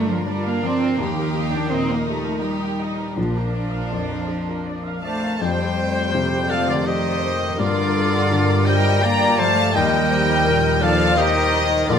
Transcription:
Already playing: grand piano G2 D3, harp G2 G3 F4 G4, violin section D4 A#4, viola section F4
0.10 cello section F3, viola section A#4
0.26 cello section G3, violin section D4, harp F4, viola section D5
0.45 cello section A#3, viola section F5
0.62 harp F3, cello section C4, viola section D5
0.82 viola section A#4
0.98 double bass section D#2, grand piano D#2, harp D#3, cello section A#3, viola section D#4 G4, violin section G4
1.17 viola section A#4
1.34 harp G4, viola section D#5
1.52 cello section D4, viola section G5
1.70 grand piano A#2, cello section C4, harp D#4, violin section D#4, viola section D#5
1.88 cello section A#3, viola section A#4
2.08 cello section A3, viola section G4
2.25 viola section A#4
2.42 cello section G3, harp G4, violin section G4, viola section D#5
2.63 viola section G5
2.79 harp D#4, violin section D#4, viola section D#5
2.98 viola section A#4
3.16 grand piano A#1, double bass section A#1, harp A#2, cello section F3, viola section D4 F4, violin section D4 A#4
3.35 viola section A#4
3.53 harp D4, viola section D5
3.71 viola section F5
3.90 grand piano F2, viola section D5
4.10 viola section A#4
4.29 viola section F4, harp F4
4.48 viola section A#4
4.66 harp D4, viola section D5
4.85 viola section F5
5.02 french horn section A3, cello section A3, flute C5, viola section D5, violin section F5 A5, oboe A5
5.24 viola section A#4
5.40 harp F2, double bass section F2, grand piano F2, french horn section G3, cello section G3, viola section A3 G4, flute C5, violin section C5 G5, oboe G5
5.77 harp F4
6.13 grand piano C3, harp A3, clarinet C5
6.50 french horn section F3, cello section F3, harp G4, flute A4, violin section D5 F5, oboe F5
6.68 cello section D3, french horn section D3, flute F4, violin section A#4 D5, oboe D5
6.85 french horn section D#3, cello section D#3, harp F4, flute G4, violin section C5 D#5, clarinet D5, oboe D#5
7.22 harp A3, clarinet C5
7.57 double bass section G2, harp G2, grand piano G2, french horn section D3, cello section D3, viola section G3 F4, flute F4, clarinet A#4, violin section A#4 D5, oboe D5
7.93 harp F4, clarinet A4
8.30 grand piano D3, harp G3, clarinet A#4
8.66 french horn section G3, cello section G3, harp G4, flute A#4, clarinet C5, violin section D#5 G5, oboe G5
9.02 french horn section A#3, cello section A#3, harp F4, clarinet D5, flute D5, violin section G5 A#5, oboe A#5
9.39 harp F3, french horn section A3, cello section A3, flute C5, violin section F5 A5, oboe A5
9.73 grand piano D#2, double bass section D#2, harp D#3, french horn section G3, cello section G3, viola section D#4, flute A#4, clarinet D#5, violin section D#5 G5, oboe G5
10.10 clarinet C5
10.45 grand piano A#2, harp D#4, clarinet A#4
10.80 cello section F3, french horn section F3, flute A4, clarinet D5, violin section D5 F5, oboe F5
11.16 french horn section D#3, cello section D#3, harp D#4, flute G4, violin section A#4 D#5, clarinet C5, oboe D#5
11.54 harp A#3
11.88 grand piano A#1, double bass section A#1, harp A#2, french horn section D3, cello section D3, viola section A#3 F4, flute F4, violin section A#4 D5, clarinet A#4, oboe D5

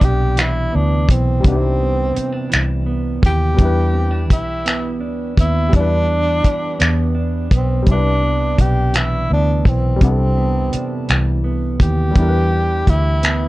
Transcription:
Already playing: clean electric guitar C3 B3, grand piano G3 D4 E4 B4
0.01 fingered electric bass B1, clean electric guitar D4, tenor saxophone G4, kick, closed hi-hat
0.36 clean electric guitar E3, finger snap, closed hi-hat
0.41 tenor saxophone E4
0.72 fingered electric bass D2, clean electric guitar B3, tenor saxophone D4
1.07 fingered electric bass B1, clean electric guitar E3, tenor saxophone C4, kick, closed hi-hat
1.40 grand piano C3 G3, clean electric guitar C3
1.44 fingered electric bass C2, tenor saxophone C4, grand piano D4, kick, closed hi-hat
1.49 grand piano D#4 G4
1.55 grand piano E4
1.79 clean electric guitar B3
2.15 clean electric guitar C4, muted fingered electric bass stroke, closed hi-hat
2.32 clean electric guitar D4
2.50 fingered electric bass C2, clean electric guitar E3, finger snap, closed hi-hat
2.86 clean electric guitar B3
3.22 fingered electric bass D#2, clean electric guitar E3, tenor saxophone G4, kick, closed hi-hat
3.54 clean electric guitar E3, grand piano G3 B3
3.59 fingered electric bass E2, grand piano D4 E4, kick, closed hi-hat
3.65 grand piano B4
3.94 clean electric guitar C4
4.11 clean electric guitar D4
4.30 fingered electric bass B1, tenor saxophone E4, clean electric guitar G4, kick, closed hi-hat
4.65 clean electric guitar B3, finger snap, closed hi-hat
5.00 fingered electric bass D2, clean electric guitar D4
5.37 fingered electric bass D#2, clean electric guitar B3, tenor saxophone E4, kick, closed hi-hat
5.69 clean electric guitar E3, grand piano G3
5.73 fingered electric bass E2, grand piano D4, tenor saxophone D4, kick, closed hi-hat
5.77 grand piano E4 B4
6.08 clean electric guitar D4
6.43 clean electric guitar G4, muted fingered electric bass stroke, kick, closed hi-hat
6.79 fingered electric bass E2, clean electric guitar B3, finger snap, closed hi-hat
7.15 clean electric guitar D4
7.51 fingered electric bass B1, clean electric guitar B3, kick, closed hi-hat
7.56 tenor saxophone C4
7.83 grand piano G3
7.87 fingered electric bass C2, clean electric guitar C3, grand piano D4 E4, kick, closed hi-hat
7.91 tenor saxophone D4, grand piano B4
8.22 clean electric guitar B3
8.57 fingered electric bass B1, clean electric guitar D4, kick, closed hi-hat
8.61 tenor saxophone G4
8.94 clean electric guitar E3, tenor saxophone E4, finger snap, closed hi-hat
9.30 fingered electric bass D2, clean electric guitar B3, tenor saxophone D4
9.65 fingered electric bass B1, clean electric guitar E3, tenor saxophone C4, kick, closed hi-hat
9.96 grand piano C3 G3
10.01 fingered electric bass C2, clean electric guitar C3, tenor saxophone C4, grand piano D4 E4, kick, closed hi-hat
10.07 grand piano A4
10.37 clean electric guitar B3
10.72 clean electric guitar D4, muted fingered electric bass stroke, closed hi-hat
11.09 fingered electric bass C2, clean electric guitar E3, finger snap, closed hi-hat
11.44 clean electric guitar B3
11.80 fingered electric bass D#2, clean electric guitar E3, tenor saxophone G4, kick, closed hi-hat
12.11 grand piano G3 B3
12.15 fingered electric bass E2, clean electric guitar E3, grand piano D4 E4, kick, closed hi-hat
12.22 grand piano A#4
12.28 grand piano B4
12.52 clean electric guitar D4
12.87 fingered electric bass D2, tenor saxophone E4, clean electric guitar G4, kick, closed hi-hat
13.22 clean electric guitar B3, finger snap, closed hi-hat

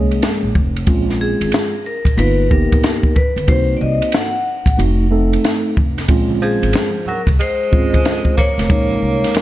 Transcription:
Already playing: upright bass C2, tine electric piano G#3 A#3 C#4 G#4, vibraphone C#5
0.11 ride
0.22 snare, hi-hat pedal, ride
0.43 upright bass A#1
0.55 upright bass F1, kick
0.76 ride
0.87 upright bass A#1, tine electric piano G#3 C4 C#4 F4, kick, ride
1.10 snare
1.21 vibraphone G#4
1.41 upright bass G#1, ride
1.52 snare, hi-hat pedal, ride
1.86 vibraphone A#4
2.05 upright bass A#1, kick, ride
2.17 upright bass G1, tine electric piano A#3 B3 D#4 F4, vibraphone B4, ride
2.50 tine electric piano A#3 B3 D#4 G4, vibraphone A#4, kick
2.72 upright bass A#1, kick, ride
2.84 snare, hi-hat pedal, ride
3.03 kick
3.16 vibraphone B4, kick
3.36 upright bass G1, ride
3.48 upright bass C2, tine electric piano A#3 C4 D#4 F#4, vibraphone C5, kick, ride
3.77 vibraphone D5
3.81 upright bass C2, vibraphone D#5
4.02 ride
4.12 vibraphone F#5, snare, hi-hat pedal, ride
4.66 upright bass A#1, kick, ride
4.77 upright bass F1, tine electric piano A3 C4 D#4 F#4, ride
5.11 tine electric piano A3 C4 D#4 A4
5.33 ride
5.44 snare, hi-hat pedal, ride
5.77 upright bass F1, kick
5.98 snare, ride
6.08 upright bass A#1, tine electric piano G#3 C4 C#4 F4, kick, ride, shaker
6.30 high conga, shaker
6.41 tenor saxophone F3, vibraphone G#4, shaker
6.62 upright bass G#1, ride, high conga, shaker
6.73 snare, hi-hat pedal, ride, low conga, shaker
6.95 shaker
7.06 tenor saxophone F#3, vibraphone A#4, low conga, shaker
7.27 upright bass C2, kick, ride, shaker
7.39 tenor saxophone G#3, vibraphone C5, ride, shaker
7.60 shaker
7.71 upright bass G#1, tine electric piano G#3 C4 C#4 F4, kick, shaker
7.92 kick, ride, high conga, shaker
8.04 snare, hi-hat pedal, ride, shaker
8.25 kick, shaker
8.37 tenor saxophone A#3, vibraphone C#5, kick, low conga, shaker
8.58 upright bass F1, snare, ride, high conga, shaker
8.69 upright bass A#1, tine electric piano G#3 A#3 C#4 D#4, kick, ride, shaker
8.91 high conga, shaker
9.02 upright bass C2, shaker
9.23 snare, ride, high conga, shaker
9.34 snare, hi-hat pedal, ride, low conga, shaker

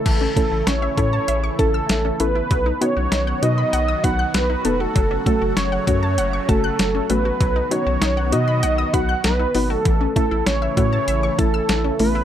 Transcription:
Already playing: analog synth lead A4
0.06 analog synth bass A1, analog synth pad C#3 E3 A3 E4, synth arpeggio sound E3, kick, closed hi-hat, crash
0.21 synth arpeggio sound C#4
0.36 synth arpeggio sound A3, synth pluck C#4 E4 A4, analog synth lead A4, kick, closed hi-hat
0.52 analog synth bass A1, synth arpeggio sound E4
0.67 analog synth bass A1, synth arpeggio sound C#4, analog synth lead C#5, snare, closed hi-hat
0.82 synth arpeggio sound E5
0.97 analog synth bass A2, synth pluck C#4 E4 A4, synth arpeggio sound E4, analog synth lead C#5, kick, closed hi-hat
1.13 synth arpeggio sound A5
1.28 analog synth bass A1, synth arpeggio sound E5, closed hi-hat
1.44 synth arpeggio sound C#6
1.59 analog synth bass A1, synth pluck C#4 E4 A4, analog synth lead A4, synth arpeggio sound A5, kick, closed hi-hat
1.74 synth arpeggio sound E6
1.89 analog synth bass A1, synth arpeggio sound E3, snare, closed hi-hat
2.05 synth arpeggio sound C#4
2.20 analog synth bass A1, synth arpeggio sound A3, synth pluck C#4 E4 A4, analog synth lead B4, closed hi-hat
2.35 synth arpeggio sound E4
2.51 analog synth bass B1, analog synth pad D#3 F#3 B3 F#4, synth arpeggio sound F#3, kick, closed hi-hat
2.66 synth arpeggio sound D#4
2.81 synth pluck B3 D#4 F#4, synth arpeggio sound B3, analog synth lead C#5, closed hi-hat
2.97 analog synth bass B1, synth arpeggio sound F#4
3.12 analog synth bass B1, synth arpeggio sound D#4, snare, closed hi-hat
3.27 synth arpeggio sound F#5
3.42 analog synth bass B2, synth pluck B3 D#4 F#4, synth arpeggio sound F#4, analog synth lead D#5, closed hi-hat
3.58 synth arpeggio sound B5
3.73 analog synth bass B1, synth arpeggio sound F#5, closed hi-hat
3.88 synth arpeggio sound D#6
4.04 analog synth bass B1, synth pluck B3 D#4 F#4, analog synth lead F#5, synth arpeggio sound B5, kick, closed hi-hat
4.19 synth arpeggio sound F#6
4.34 analog synth bass B1, synth arpeggio sound F#3, analog synth lead B4, snare, closed hi-hat
4.50 synth arpeggio sound D#4
4.65 analog synth bass E1, synth arpeggio sound B3, synth pluck B3 D#4 A4, closed hi-hat
4.80 synth arpeggio sound F#4, analog synth lead A4
4.96 analog synth bass F#1, analog synth pad C#3 A3, synth arpeggio sound F#3, kick, closed hi-hat
5.11 synth arpeggio sound C#4
5.26 synth arpeggio sound A3, synth pluck A3 C#4 F#4, analog synth lead A4, kick, closed hi-hat
5.41 analog synth bass F#1, synth arpeggio sound F#4
5.57 analog synth bass F#1, synth arpeggio sound C#4, analog synth lead C#5, snare, closed hi-hat
5.72 synth arpeggio sound F#5
5.87 analog synth bass F#2, synth pluck A3 C#4 F#4, synth arpeggio sound F#4, analog synth lead C#5, kick, closed hi-hat
6.03 synth arpeggio sound A5
6.18 analog synth bass F#1, synth arpeggio sound F#5, closed hi-hat
6.33 synth arpeggio sound C#6
6.49 analog synth bass F#1, synth pluck A3 C#4 F#4, analog synth lead A4, synth arpeggio sound A5, kick, closed hi-hat
6.64 synth arpeggio sound F#6
6.79 analog synth bass F#1, synth arpeggio sound F#3, snare, closed hi-hat
6.95 synth arpeggio sound C#4
7.10 analog synth bass A1, synth pluck A3 C#4 F#4, synth arpeggio sound A3, analog synth lead B4, closed hi-hat
7.25 synth arpeggio sound F#4
7.40 analog synth bass B1, analog synth pad D#3 B3 F#4, synth arpeggio sound F#3, kick, closed hi-hat
7.56 synth arpeggio sound D#4
7.71 synth pluck B3 D#4 F#4, synth arpeggio sound B3, analog synth lead C#5, closed hi-hat
7.86 analog synth bass B1, synth arpeggio sound F#4
8.02 analog synth bass B1, synth arpeggio sound D#4, snare, closed hi-hat
8.17 synth arpeggio sound F#5
8.32 analog synth bass B2, synth pluck B3 D#4 F#4, synth arpeggio sound F#4, analog synth lead D#5, closed hi-hat
8.48 synth arpeggio sound B5
8.63 analog synth bass B1, synth arpeggio sound F#5, closed hi-hat
8.78 synth arpeggio sound D#6
8.94 analog synth bass B1, synth pluck B3 D#4 F#4, analog synth lead F#5, synth arpeggio sound B5, kick, closed hi-hat
9.09 synth arpeggio sound F#6
9.24 analog synth bass B1, synth arpeggio sound F#3, analog synth lead B4, snare, closed hi-hat
9.39 synth arpeggio sound D#4
9.55 analog synth bass G#1, synth arpeggio sound B3, synth pluck B3 D#4 F#4, open hi-hat
9.70 synth arpeggio sound F#4, analog synth lead A4
9.85 analog synth bass A1, analog synth pad C#3 E3 A3 E4, synth arpeggio sound E3, kick, closed hi-hat
10.01 synth arpeggio sound C#4
10.16 synth arpeggio sound A3, synth pluck A3 C#4 E4, analog synth lead A4, kick, closed hi-hat
10.31 analog synth bass A1, synth arpeggio sound E4
10.46 analog synth bass A1, synth arpeggio sound C#4, analog synth lead C#5, snare, closed hi-hat
10.62 synth arpeggio sound E5
10.77 analog synth bass A2, synth pluck A3 C#4 F#4, synth arpeggio sound E4, analog synth lead C#5, kick, closed hi-hat
10.93 synth arpeggio sound A5
11.08 analog synth bass A1, synth arpeggio sound E5, closed hi-hat
11.23 synth arpeggio sound C#6
11.38 analog synth bass A1, synth pluck A3 C#4 E4, analog synth lead A4, synth arpeggio sound A5, kick, closed hi-hat
11.54 synth arpeggio sound E6
11.69 analog synth bass A1, synth arpeggio sound E3, snare, closed hi-hat
11.84 synth arpeggio sound C#4
11.99 analog synth bass A1, synth pluck A3 C#4 E4, synth arpeggio sound A3, analog synth lead B4, open hi-hat
12.15 synth arpeggio sound E4

